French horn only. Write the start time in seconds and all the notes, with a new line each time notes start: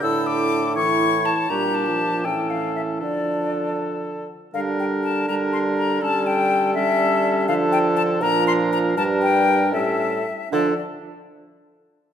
Already playing: D3
0.76 E3
1.50 G3
1.87 F3
2.25 E3
3.02 F3
4.54 G3
5.28 G3
6.02 G3
6.76 G3
7.49 F3
8.22 F3
8.96 G3
9.73 G3
10.52 F3